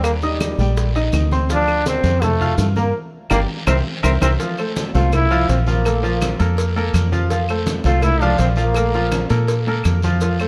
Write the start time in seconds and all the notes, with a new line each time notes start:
Already playing: D#2 G3 G4 G5
0.03 A#3, high bongo, high conga, long guiro, claves, maracas
0.22 G3 D#4 D#5 D#6, high bongo, high conga, maracas
0.40 high bongo, high conga, short guiro, claves, maracas
0.58 A#1 G3 G4 G5, high bongo, high conga, short guiro, maracas
0.77 high bongo, high conga, long guiro, maracas
0.95 D#4 D#5 D#6, high conga, maracas
1.12 D2, high bongo, low bongo, high conga, short guiro, claves, maracas
1.31 C4 C5 C6, high bongo, high conga, short guiro, maracas
1.50 F3 D4 F4 F5, high bongo, high conga, long guiro, maracas
1.68 high bongo, high conga, claves, maracas
1.86 C4 C5 C6, high bongo, high conga, short guiro, maracas
2.04 F2, high bongo, high conga, short guiro, maracas
2.22 A3 A4 A5, high bongo, high conga, low conga, long guiro, claves, maracas
2.40 F4 F5 F6, high conga, low conga, maracas
2.58 G2 A3, high bongo, low bongo, high conga, short guiro, maracas
2.76 A#3 A#4 A#5, high bongo, high conga, short guiro, maracas
3.30 G1 A#3 G4 A#4 D5, low bongo, high conga, long guiro, claves, maracas
3.66 C2 C4 A#4 C5 E5, low bongo, high conga, long guiro, claves, maracas
4.03 C2 C4 A#4 C5 E5, low bongo, high conga, long guiro, claves, maracas
4.21 C2 C4 A#4 C5 E5, low bongo, high conga, long guiro, claves, maracas
4.40 F3 F4 F5, cowbell, high conga, long guiro, maracas
4.58 A3 A4 C5, high conga, claves, maracas
4.76 cowbell, high conga, short guiro, maracas
4.94 C2 A3 F4 A4 C5, high conga, short guiro, maracas
5.12 E4, cowbell, high conga, low conga, long guiro, claves, maracas
5.31 F3 F4 F5, high conga, maracas
5.49 A#1 C4, cowbell, high conga, short guiro, maracas
5.67 F3 A#3 F4 F5, high conga, short guiro, maracas
5.84 A3 A4 A#4, cowbell, high conga, long guiro, claves, maracas
6.03 F3 F4 F5, high conga, maracas
6.21 cowbell, high conga, short guiro, claves, maracas
6.39 F2 A#3 A4 A#4, cowbell, high conga, short guiro, maracas
6.57 cowbell, high conga, long guiro, maracas
6.76 A#3 A4 A#4, high conga, maracas
6.94 F2, cowbell, high conga, short guiro, claves, maracas
7.12 F3 F4 F5, high conga, short guiro, maracas
7.30 F3 F4 F5, cowbell, high conga, long guiro, maracas
7.49 A3 A4 C5, high conga, claves, maracas
7.66 cowbell, high conga, short guiro, maracas
7.84 C2 A3 F4 A4 C5, high conga, short guiro, maracas
8.02 E4, cowbell, high conga, low conga, long guiro, claves, maracas
8.21 F3 D4 F4 F5, high conga, low conga, maracas
8.38 A#1 C4, cowbell, high conga, short guiro, maracas
8.56 F3 A#3 F4 F5, short guiro, maracas
8.74 A3 A4 A#4, cowbell, high conga, long guiro, claves, maracas
8.94 F3 F4 F5, high conga, maracas
9.11 cowbell, high conga, short guiro, claves, maracas
9.29 A#2 A#3 A4 A#4, cowbell, high conga, short guiro, maracas
9.48 cowbell, high conga, long guiro, maracas
9.66 A#3 A4 A#4, high conga, maracas
9.84 F2, cowbell, high conga, short guiro, claves, maracas
10.02 F3 F4 F5, high conga, short guiro, maracas
10.20 F3 F4 F5, cowbell, high conga, long guiro, maracas
10.39 A3 A4 C5, high conga, claves, maracas